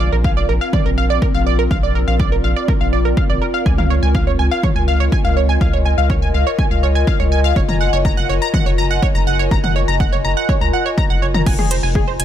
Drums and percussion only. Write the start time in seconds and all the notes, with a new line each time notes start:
0.24 kick
0.73 kick, mid tom
1.22 kick
1.71 kick
2.20 kick
2.68 kick
3.17 kick
3.66 kick
3.78 mid tom
4.15 kick
4.63 kick, mid tom
5.12 kick
5.61 kick
6.10 kick
6.59 kick
7.07 kick
7.56 kick
7.69 mid tom
8.05 kick
8.54 kick, mid tom
9.03 kick
9.51 kick
9.64 mid tom
10.00 kick
10.49 kick
10.98 kick
11.34 mid tom
11.46 kick, crash
11.59 mid tom
11.71 closed hi-hat
11.95 kick
12.20 closed hi-hat